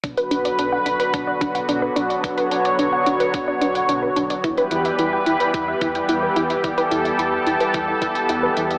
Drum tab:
HH |xxxxx-xxx-xxx-xx|xxxxx-xxx-xxx-xx|xxxxx-xxx-xxx-xx|xxxxx-xxx-xxx-xx|
BD |o-------o-o-----|o-------o-------|o-------o-o-----|o-------o-o-----|